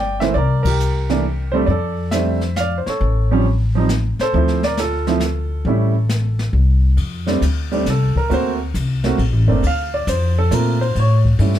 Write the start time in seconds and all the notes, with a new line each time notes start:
Already playing: G1 D5 G5
0.20 E3 A3 A#3 E4 C5 E5, snare
0.34 C2 A#4 D5, brush sweep, kick
0.63 A#4, kick, crash
0.67 G4
0.80 hi-hat pedal
1.10 E3 A3 A#3 D4, snare
1.52 G3 A3 C4 D4 C5
1.56 A4
1.66 F2 D5, brush sweep, kick
1.71 A4
2.11 G3 A3 C4 D4 C5 E5, snare, hi-hat pedal
2.41 snare
2.56 D5 F5, snare, hi-hat pedal
2.78 C5
2.86 A4 C#5, muted upright bass stroke, snare
3.01 A1, brush sweep, kick
3.31 F3 G3 C4 C#4
3.75 F3 G3 C4 D#4
3.89 snare, hi-hat pedal
4.19 A4 C5, muted upright bass stroke, snare
4.33 D2 F3 A3 C4 E4, brush sweep, kick
4.48 snare
4.63 A#4 D5, snare
4.77 F4 A4, snare, hi-hat pedal
5.07 F3 A3 C4 E4, snare
5.20 snare, hi-hat pedal
5.65 A1 G3 A3 C#4 E4, brush sweep, kick
6.09 snare, hi-hat pedal
6.39 snare
6.53 C2
6.97 F2, kick, ride
7.27 G3 A3 C4 D4, snare
7.41 D2, kick, hi-hat pedal, ride
7.72 G3 A3 C4 D4, ride
7.86 C2, kick, snare, hi-hat pedal, ride
7.90 A4
8.16 A#4, muted upright bass stroke, kick
8.30 D2 A3 A#3 C4 F#4, ride
8.34 C5
8.74 C2, kick, hi-hat pedal, ride
9.04 A3 A#3 C4 F#4, snare
9.18 A#1, kick, ride
9.32 A1
9.47 F#1 A3 A#3 C4 D4
9.63 D2, kick, ride
9.67 F5
9.94 D5
10.07 F2 C5, kick, hi-hat pedal, ride
10.39 A4
10.51 A#2 A3 A#3 C4 F4 A#4, kick, hi-hat pedal, ride
10.81 C5, ride
10.95 A2, kick, ride
10.99 C#5
11.25 kick
11.39 G2 G3 A3 C#4 E4, kick, ride
11.54 snare